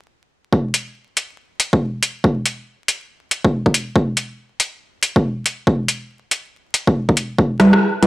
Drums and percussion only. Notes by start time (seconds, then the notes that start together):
0.53 kick
0.74 closed hi-hat
1.17 closed hi-hat
1.60 closed hi-hat
1.73 kick
2.03 closed hi-hat
2.24 kick
2.46 closed hi-hat
2.88 closed hi-hat
3.31 closed hi-hat
3.44 kick
3.66 kick
3.74 closed hi-hat
3.96 kick
4.17 closed hi-hat
4.60 closed hi-hat
5.03 closed hi-hat
5.16 kick
5.46 closed hi-hat
5.67 kick
5.88 closed hi-hat
6.31 closed hi-hat
6.74 closed hi-hat
6.87 kick
7.09 kick
7.17 closed hi-hat
7.38 kick
7.60 cross-stick, closed hi-hat
7.73 cross-stick
8.03 closed hi-hat